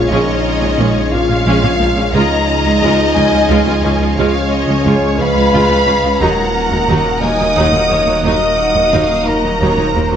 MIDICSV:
0, 0, Header, 1, 11, 480
1, 0, Start_track
1, 0, Tempo, 677966
1, 76, Time_signature, 6, 3, 24, 8
1, 7197, End_track
2, 0, Start_track
2, 0, Title_t, "Violin section"
2, 0, Program_c, 0, 48
2, 71, Note_on_c, 0, 75, 79
2, 790, Note_on_c, 0, 77, 90
2, 793, Note_off_c, 0, 75, 0
2, 1499, Note_off_c, 0, 77, 0
2, 1510, Note_on_c, 0, 75, 87
2, 2948, Note_on_c, 0, 73, 83
2, 2953, Note_off_c, 0, 75, 0
2, 3658, Note_off_c, 0, 73, 0
2, 3683, Note_on_c, 0, 83, 109
2, 4385, Note_off_c, 0, 83, 0
2, 4390, Note_on_c, 0, 82, 80
2, 5113, Note_off_c, 0, 82, 0
2, 5122, Note_on_c, 0, 87, 93
2, 5829, Note_off_c, 0, 87, 0
2, 5838, Note_on_c, 0, 87, 88
2, 6542, Note_off_c, 0, 87, 0
2, 6555, Note_on_c, 0, 82, 84
2, 7197, Note_off_c, 0, 82, 0
2, 7197, End_track
3, 0, Start_track
3, 0, Title_t, "Violin section"
3, 0, Program_c, 1, 48
3, 0, Note_on_c, 1, 73, 67
3, 792, Note_on_c, 1, 77, 83
3, 798, Note_off_c, 1, 73, 0
3, 1514, Note_off_c, 1, 77, 0
3, 1514, Note_on_c, 1, 82, 93
3, 2220, Note_off_c, 1, 82, 0
3, 2231, Note_on_c, 1, 80, 74
3, 2954, Note_off_c, 1, 80, 0
3, 2956, Note_on_c, 1, 77, 79
3, 3191, Note_off_c, 1, 77, 0
3, 3194, Note_on_c, 1, 75, 72
3, 3435, Note_off_c, 1, 75, 0
3, 3443, Note_on_c, 1, 73, 70
3, 3680, Note_off_c, 1, 73, 0
3, 3682, Note_on_c, 1, 77, 87
3, 4399, Note_off_c, 1, 77, 0
3, 4402, Note_on_c, 1, 78, 83
3, 5105, Note_off_c, 1, 78, 0
3, 5117, Note_on_c, 1, 80, 80
3, 5357, Note_off_c, 1, 80, 0
3, 5361, Note_on_c, 1, 78, 75
3, 5599, Note_off_c, 1, 78, 0
3, 5607, Note_on_c, 1, 73, 66
3, 5840, Note_on_c, 1, 75, 59
3, 5841, Note_off_c, 1, 73, 0
3, 6078, Note_off_c, 1, 75, 0
3, 6081, Note_on_c, 1, 78, 69
3, 6319, Note_off_c, 1, 78, 0
3, 6323, Note_on_c, 1, 77, 63
3, 6559, Note_off_c, 1, 77, 0
3, 6566, Note_on_c, 1, 75, 62
3, 6801, Note_off_c, 1, 75, 0
3, 6804, Note_on_c, 1, 73, 61
3, 7039, Note_on_c, 1, 72, 62
3, 7040, Note_off_c, 1, 73, 0
3, 7197, Note_off_c, 1, 72, 0
3, 7197, End_track
4, 0, Start_track
4, 0, Title_t, "French horn section"
4, 0, Program_c, 2, 60
4, 62, Note_on_c, 2, 63, 96
4, 789, Note_off_c, 2, 63, 0
4, 790, Note_on_c, 2, 65, 95
4, 1394, Note_off_c, 2, 65, 0
4, 1514, Note_on_c, 2, 63, 107
4, 2927, Note_off_c, 2, 63, 0
4, 2953, Note_on_c, 2, 61, 87
4, 3660, Note_off_c, 2, 61, 0
4, 3670, Note_on_c, 2, 71, 112
4, 4393, Note_off_c, 2, 71, 0
4, 4399, Note_on_c, 2, 70, 91
4, 5109, Note_on_c, 2, 75, 97
4, 5118, Note_off_c, 2, 70, 0
4, 5825, Note_off_c, 2, 75, 0
4, 5833, Note_on_c, 2, 75, 98
4, 6540, Note_off_c, 2, 75, 0
4, 6557, Note_on_c, 2, 70, 89
4, 7197, Note_off_c, 2, 70, 0
4, 7197, End_track
5, 0, Start_track
5, 0, Title_t, "Ambient pad"
5, 0, Program_c, 3, 92
5, 0, Note_on_c, 3, 56, 79
5, 0, Note_on_c, 3, 61, 80
5, 0, Note_on_c, 3, 65, 80
5, 0, Note_on_c, 3, 73, 79
5, 1489, Note_off_c, 3, 73, 0
5, 1490, Note_off_c, 3, 61, 0
5, 1490, Note_off_c, 3, 65, 0
5, 1491, Note_off_c, 3, 56, 0
5, 1515, Note_on_c, 3, 61, 67
5, 1516, Note_on_c, 3, 56, 79
5, 1517, Note_on_c, 3, 65, 76
5, 1518, Note_on_c, 3, 73, 71
5, 4367, Note_off_c, 3, 56, 0
5, 4367, Note_off_c, 3, 61, 0
5, 4368, Note_off_c, 3, 65, 0
5, 4369, Note_off_c, 3, 73, 0
5, 4402, Note_on_c, 3, 70, 69
5, 4403, Note_on_c, 3, 58, 68
5, 4404, Note_on_c, 3, 63, 70
5, 4406, Note_on_c, 3, 66, 73
5, 7197, Note_off_c, 3, 58, 0
5, 7197, Note_off_c, 3, 63, 0
5, 7197, Note_off_c, 3, 66, 0
5, 7197, Note_off_c, 3, 70, 0
5, 7197, End_track
6, 0, Start_track
6, 0, Title_t, "Viola section"
6, 0, Program_c, 4, 48
6, 76, Note_on_c, 4, 61, 77
6, 79, Note_on_c, 4, 56, 72
6, 188, Note_off_c, 4, 61, 0
6, 189, Note_off_c, 4, 56, 0
6, 440, Note_on_c, 4, 56, 45
6, 440, Note_on_c, 4, 61, 48
6, 487, Note_off_c, 4, 56, 0
6, 487, Note_off_c, 4, 61, 0
6, 556, Note_on_c, 4, 61, 79
6, 559, Note_on_c, 4, 56, 72
6, 668, Note_off_c, 4, 61, 0
6, 669, Note_off_c, 4, 56, 0
6, 801, Note_on_c, 4, 58, 51
6, 802, Note_on_c, 4, 53, 58
6, 848, Note_off_c, 4, 53, 0
6, 848, Note_off_c, 4, 58, 0
6, 917, Note_on_c, 4, 56, 64
6, 918, Note_on_c, 4, 61, 63
6, 965, Note_off_c, 4, 56, 0
6, 965, Note_off_c, 4, 61, 0
6, 1035, Note_on_c, 4, 56, 82
6, 1036, Note_on_c, 4, 61, 80
6, 1145, Note_off_c, 4, 61, 0
6, 1147, Note_off_c, 4, 56, 0
6, 1153, Note_on_c, 4, 61, 66
6, 1156, Note_on_c, 4, 56, 64
6, 1202, Note_off_c, 4, 61, 0
6, 1204, Note_off_c, 4, 56, 0
6, 1275, Note_on_c, 4, 53, 59
6, 1276, Note_on_c, 4, 58, 55
6, 1323, Note_off_c, 4, 53, 0
6, 1324, Note_off_c, 4, 58, 0
6, 1393, Note_on_c, 4, 56, 66
6, 1394, Note_on_c, 4, 61, 62
6, 1442, Note_off_c, 4, 56, 0
6, 1443, Note_off_c, 4, 61, 0
6, 1515, Note_on_c, 4, 56, 66
6, 1515, Note_on_c, 4, 65, 83
6, 1627, Note_off_c, 4, 56, 0
6, 1627, Note_off_c, 4, 65, 0
6, 1878, Note_on_c, 4, 65, 46
6, 1880, Note_on_c, 4, 56, 47
6, 1926, Note_off_c, 4, 65, 0
6, 1927, Note_off_c, 4, 56, 0
6, 1995, Note_on_c, 4, 56, 86
6, 1997, Note_on_c, 4, 65, 85
6, 2107, Note_off_c, 4, 56, 0
6, 2108, Note_off_c, 4, 65, 0
6, 2239, Note_on_c, 4, 61, 62
6, 2240, Note_on_c, 4, 53, 62
6, 2287, Note_off_c, 4, 53, 0
6, 2287, Note_off_c, 4, 61, 0
6, 2353, Note_on_c, 4, 65, 72
6, 2354, Note_on_c, 4, 56, 72
6, 2402, Note_off_c, 4, 56, 0
6, 2402, Note_off_c, 4, 65, 0
6, 2476, Note_on_c, 4, 56, 78
6, 2476, Note_on_c, 4, 65, 86
6, 2588, Note_off_c, 4, 56, 0
6, 2588, Note_off_c, 4, 65, 0
6, 2598, Note_on_c, 4, 56, 60
6, 2600, Note_on_c, 4, 65, 72
6, 2646, Note_off_c, 4, 56, 0
6, 2647, Note_off_c, 4, 65, 0
6, 2719, Note_on_c, 4, 61, 64
6, 2721, Note_on_c, 4, 53, 60
6, 2766, Note_off_c, 4, 61, 0
6, 2768, Note_off_c, 4, 53, 0
6, 2838, Note_on_c, 4, 65, 60
6, 2840, Note_on_c, 4, 56, 55
6, 2886, Note_off_c, 4, 65, 0
6, 2888, Note_off_c, 4, 56, 0
6, 2955, Note_on_c, 4, 65, 82
6, 2957, Note_on_c, 4, 56, 91
6, 3067, Note_off_c, 4, 65, 0
6, 3068, Note_off_c, 4, 56, 0
6, 3315, Note_on_c, 4, 56, 48
6, 3317, Note_on_c, 4, 65, 47
6, 3363, Note_off_c, 4, 56, 0
6, 3365, Note_off_c, 4, 65, 0
6, 3437, Note_on_c, 4, 56, 77
6, 3437, Note_on_c, 4, 65, 83
6, 3548, Note_off_c, 4, 56, 0
6, 3548, Note_off_c, 4, 65, 0
6, 3677, Note_on_c, 4, 61, 64
6, 3678, Note_on_c, 4, 53, 54
6, 3725, Note_off_c, 4, 53, 0
6, 3725, Note_off_c, 4, 61, 0
6, 3792, Note_on_c, 4, 65, 66
6, 3794, Note_on_c, 4, 56, 65
6, 3841, Note_off_c, 4, 65, 0
6, 3842, Note_off_c, 4, 56, 0
6, 3916, Note_on_c, 4, 56, 77
6, 3916, Note_on_c, 4, 65, 87
6, 4023, Note_off_c, 4, 56, 0
6, 4024, Note_off_c, 4, 65, 0
6, 4032, Note_on_c, 4, 56, 62
6, 4032, Note_on_c, 4, 65, 68
6, 4080, Note_off_c, 4, 56, 0
6, 4081, Note_off_c, 4, 65, 0
6, 4157, Note_on_c, 4, 53, 65
6, 4157, Note_on_c, 4, 61, 64
6, 4205, Note_off_c, 4, 53, 0
6, 4205, Note_off_c, 4, 61, 0
6, 4271, Note_on_c, 4, 65, 62
6, 4274, Note_on_c, 4, 56, 58
6, 4320, Note_off_c, 4, 65, 0
6, 4322, Note_off_c, 4, 56, 0
6, 4395, Note_on_c, 4, 54, 75
6, 4396, Note_on_c, 4, 63, 69
6, 4507, Note_off_c, 4, 54, 0
6, 4508, Note_off_c, 4, 63, 0
6, 4758, Note_on_c, 4, 54, 47
6, 4759, Note_on_c, 4, 63, 43
6, 4806, Note_off_c, 4, 54, 0
6, 4807, Note_off_c, 4, 63, 0
6, 4874, Note_on_c, 4, 54, 73
6, 4875, Note_on_c, 4, 63, 74
6, 4986, Note_off_c, 4, 54, 0
6, 4987, Note_off_c, 4, 63, 0
6, 5113, Note_on_c, 4, 58, 52
6, 5114, Note_on_c, 4, 51, 51
6, 5162, Note_off_c, 4, 58, 0
6, 5163, Note_off_c, 4, 51, 0
6, 5231, Note_on_c, 4, 54, 59
6, 5233, Note_on_c, 4, 63, 69
6, 5280, Note_off_c, 4, 54, 0
6, 5282, Note_off_c, 4, 63, 0
6, 5354, Note_on_c, 4, 63, 74
6, 5355, Note_on_c, 4, 54, 73
6, 5467, Note_off_c, 4, 54, 0
6, 5467, Note_off_c, 4, 63, 0
6, 5476, Note_on_c, 4, 54, 61
6, 5479, Note_on_c, 4, 63, 61
6, 5524, Note_off_c, 4, 54, 0
6, 5527, Note_off_c, 4, 63, 0
6, 5594, Note_on_c, 4, 58, 49
6, 5597, Note_on_c, 4, 51, 54
6, 5642, Note_off_c, 4, 58, 0
6, 5645, Note_off_c, 4, 51, 0
6, 5714, Note_on_c, 4, 63, 51
6, 5715, Note_on_c, 4, 54, 55
6, 5762, Note_off_c, 4, 63, 0
6, 5763, Note_off_c, 4, 54, 0
6, 5833, Note_on_c, 4, 54, 66
6, 5834, Note_on_c, 4, 63, 65
6, 5946, Note_off_c, 4, 54, 0
6, 5946, Note_off_c, 4, 63, 0
6, 6194, Note_on_c, 4, 54, 43
6, 6195, Note_on_c, 4, 63, 41
6, 6242, Note_off_c, 4, 54, 0
6, 6243, Note_off_c, 4, 63, 0
6, 6315, Note_on_c, 4, 54, 69
6, 6316, Note_on_c, 4, 63, 77
6, 6427, Note_off_c, 4, 54, 0
6, 6428, Note_off_c, 4, 63, 0
6, 6557, Note_on_c, 4, 58, 48
6, 6558, Note_on_c, 4, 51, 45
6, 6605, Note_off_c, 4, 58, 0
6, 6606, Note_off_c, 4, 51, 0
6, 6680, Note_on_c, 4, 54, 51
6, 6681, Note_on_c, 4, 63, 48
6, 6727, Note_off_c, 4, 54, 0
6, 6728, Note_off_c, 4, 63, 0
6, 6803, Note_on_c, 4, 63, 62
6, 6804, Note_on_c, 4, 54, 59
6, 6910, Note_off_c, 4, 54, 0
6, 6911, Note_off_c, 4, 63, 0
6, 6919, Note_on_c, 4, 54, 51
6, 6919, Note_on_c, 4, 63, 53
6, 6966, Note_off_c, 4, 54, 0
6, 6967, Note_off_c, 4, 63, 0
6, 7039, Note_on_c, 4, 51, 52
6, 7041, Note_on_c, 4, 58, 53
6, 7086, Note_off_c, 4, 51, 0
6, 7088, Note_off_c, 4, 58, 0
6, 7156, Note_on_c, 4, 54, 47
6, 7156, Note_on_c, 4, 63, 48
6, 7197, Note_off_c, 4, 54, 0
6, 7197, Note_off_c, 4, 63, 0
6, 7197, End_track
7, 0, Start_track
7, 0, Title_t, "Trombone section"
7, 0, Program_c, 5, 61
7, 0, Note_on_c, 5, 49, 65
7, 0, Note_on_c, 5, 56, 66
7, 1486, Note_off_c, 5, 49, 0
7, 1487, Note_off_c, 5, 56, 0
7, 1516, Note_on_c, 5, 53, 76
7, 1516, Note_on_c, 5, 56, 67
7, 4276, Note_off_c, 5, 53, 0
7, 4276, Note_off_c, 5, 56, 0
7, 4396, Note_on_c, 5, 58, 65
7, 4399, Note_on_c, 5, 54, 65
7, 7197, Note_off_c, 5, 54, 0
7, 7197, Note_off_c, 5, 58, 0
7, 7197, End_track
8, 0, Start_track
8, 0, Title_t, "Cello section"
8, 0, Program_c, 6, 48
8, 74, Note_on_c, 6, 46, 80
8, 122, Note_off_c, 6, 46, 0
8, 434, Note_on_c, 6, 46, 57
8, 482, Note_off_c, 6, 46, 0
8, 553, Note_on_c, 6, 46, 73
8, 602, Note_off_c, 6, 46, 0
8, 795, Note_on_c, 6, 46, 54
8, 843, Note_off_c, 6, 46, 0
8, 912, Note_on_c, 6, 46, 53
8, 961, Note_off_c, 6, 46, 0
8, 1029, Note_on_c, 6, 46, 90
8, 1078, Note_off_c, 6, 46, 0
8, 1150, Note_on_c, 6, 46, 51
8, 1199, Note_off_c, 6, 46, 0
8, 1268, Note_on_c, 6, 46, 57
8, 1317, Note_off_c, 6, 46, 0
8, 1389, Note_on_c, 6, 46, 60
8, 1439, Note_off_c, 6, 46, 0
8, 1512, Note_on_c, 6, 37, 88
8, 1561, Note_off_c, 6, 37, 0
8, 1874, Note_on_c, 6, 37, 59
8, 1923, Note_off_c, 6, 37, 0
8, 1996, Note_on_c, 6, 37, 83
8, 2044, Note_off_c, 6, 37, 0
8, 2236, Note_on_c, 6, 37, 52
8, 2284, Note_off_c, 6, 37, 0
8, 2353, Note_on_c, 6, 37, 50
8, 2402, Note_off_c, 6, 37, 0
8, 2468, Note_on_c, 6, 37, 87
8, 2518, Note_off_c, 6, 37, 0
8, 2593, Note_on_c, 6, 37, 62
8, 2641, Note_off_c, 6, 37, 0
8, 2712, Note_on_c, 6, 37, 58
8, 2761, Note_off_c, 6, 37, 0
8, 2834, Note_on_c, 6, 37, 61
8, 2882, Note_off_c, 6, 37, 0
8, 2953, Note_on_c, 6, 37, 91
8, 3001, Note_off_c, 6, 37, 0
8, 3314, Note_on_c, 6, 37, 66
8, 3362, Note_off_c, 6, 37, 0
8, 3433, Note_on_c, 6, 37, 81
8, 3482, Note_off_c, 6, 37, 0
8, 3677, Note_on_c, 6, 37, 59
8, 3724, Note_off_c, 6, 37, 0
8, 3797, Note_on_c, 6, 37, 54
8, 3845, Note_off_c, 6, 37, 0
8, 3915, Note_on_c, 6, 37, 81
8, 3964, Note_off_c, 6, 37, 0
8, 4035, Note_on_c, 6, 37, 58
8, 4083, Note_off_c, 6, 37, 0
8, 4152, Note_on_c, 6, 37, 58
8, 4201, Note_off_c, 6, 37, 0
8, 4271, Note_on_c, 6, 37, 60
8, 4320, Note_off_c, 6, 37, 0
8, 4392, Note_on_c, 6, 39, 84
8, 4441, Note_off_c, 6, 39, 0
8, 4751, Note_on_c, 6, 39, 55
8, 4800, Note_off_c, 6, 39, 0
8, 4872, Note_on_c, 6, 39, 80
8, 4921, Note_off_c, 6, 39, 0
8, 5109, Note_on_c, 6, 39, 53
8, 5159, Note_off_c, 6, 39, 0
8, 5233, Note_on_c, 6, 39, 52
8, 5282, Note_off_c, 6, 39, 0
8, 5349, Note_on_c, 6, 39, 77
8, 5399, Note_off_c, 6, 39, 0
8, 5469, Note_on_c, 6, 39, 52
8, 5519, Note_off_c, 6, 39, 0
8, 5589, Note_on_c, 6, 39, 55
8, 5639, Note_off_c, 6, 39, 0
8, 5710, Note_on_c, 6, 39, 58
8, 5759, Note_off_c, 6, 39, 0
8, 5829, Note_on_c, 6, 39, 73
8, 5878, Note_off_c, 6, 39, 0
8, 6193, Note_on_c, 6, 39, 54
8, 6242, Note_off_c, 6, 39, 0
8, 6312, Note_on_c, 6, 39, 78
8, 6361, Note_off_c, 6, 39, 0
8, 6549, Note_on_c, 6, 39, 47
8, 6599, Note_off_c, 6, 39, 0
8, 6669, Note_on_c, 6, 39, 42
8, 6718, Note_off_c, 6, 39, 0
8, 6792, Note_on_c, 6, 39, 64
8, 6841, Note_off_c, 6, 39, 0
8, 6914, Note_on_c, 6, 39, 44
8, 6962, Note_off_c, 6, 39, 0
8, 7037, Note_on_c, 6, 39, 49
8, 7084, Note_off_c, 6, 39, 0
8, 7155, Note_on_c, 6, 39, 52
8, 7197, Note_off_c, 6, 39, 0
8, 7197, End_track
9, 0, Start_track
9, 0, Title_t, "Double bass section"
9, 0, Program_c, 7, 48
9, 74, Note_on_c, 7, 34, 77
9, 122, Note_off_c, 7, 34, 0
9, 554, Note_on_c, 7, 34, 83
9, 603, Note_off_c, 7, 34, 0
9, 793, Note_on_c, 7, 34, 53
9, 841, Note_off_c, 7, 34, 0
9, 1031, Note_on_c, 7, 34, 82
9, 1080, Note_off_c, 7, 34, 0
9, 1270, Note_on_c, 7, 34, 58
9, 1319, Note_off_c, 7, 34, 0
9, 1511, Note_on_c, 7, 37, 80
9, 1560, Note_off_c, 7, 37, 0
9, 1994, Note_on_c, 7, 37, 82
9, 2042, Note_off_c, 7, 37, 0
9, 2235, Note_on_c, 7, 37, 58
9, 2283, Note_off_c, 7, 37, 0
9, 2476, Note_on_c, 7, 37, 90
9, 2524, Note_off_c, 7, 37, 0
9, 2716, Note_on_c, 7, 37, 59
9, 2764, Note_off_c, 7, 37, 0
9, 2958, Note_on_c, 7, 37, 78
9, 3006, Note_off_c, 7, 37, 0
9, 3437, Note_on_c, 7, 37, 87
9, 3485, Note_off_c, 7, 37, 0
9, 3678, Note_on_c, 7, 37, 58
9, 3726, Note_off_c, 7, 37, 0
9, 3918, Note_on_c, 7, 37, 90
9, 3966, Note_off_c, 7, 37, 0
9, 4157, Note_on_c, 7, 37, 69
9, 4205, Note_off_c, 7, 37, 0
9, 4401, Note_on_c, 7, 39, 78
9, 4448, Note_off_c, 7, 39, 0
9, 4877, Note_on_c, 7, 39, 91
9, 4925, Note_off_c, 7, 39, 0
9, 5117, Note_on_c, 7, 39, 54
9, 5165, Note_off_c, 7, 39, 0
9, 5358, Note_on_c, 7, 39, 80
9, 5405, Note_off_c, 7, 39, 0
9, 5596, Note_on_c, 7, 39, 54
9, 5644, Note_off_c, 7, 39, 0
9, 5842, Note_on_c, 7, 39, 70
9, 5888, Note_off_c, 7, 39, 0
9, 6318, Note_on_c, 7, 39, 83
9, 6366, Note_off_c, 7, 39, 0
9, 6563, Note_on_c, 7, 39, 42
9, 6610, Note_off_c, 7, 39, 0
9, 6804, Note_on_c, 7, 39, 75
9, 6850, Note_off_c, 7, 39, 0
9, 7040, Note_on_c, 7, 39, 50
9, 7088, Note_off_c, 7, 39, 0
9, 7197, End_track
10, 0, Start_track
10, 0, Title_t, "Detuned saw bass"
10, 0, Program_c, 8, 39
10, 0, Note_on_c, 8, 34, 75
10, 1520, Note_on_c, 8, 37, 70
10, 1530, Note_off_c, 8, 34, 0
10, 4402, Note_on_c, 8, 27, 61
10, 4413, Note_off_c, 8, 37, 0
10, 7197, Note_off_c, 8, 27, 0
10, 7197, End_track
11, 0, Start_track
11, 0, Title_t, "Sub drop"
11, 0, Program_c, 10, 103
11, 0, Note_on_c, 10, 60, 69
11, 78, Note_off_c, 10, 60, 0
11, 7197, End_track
0, 0, End_of_file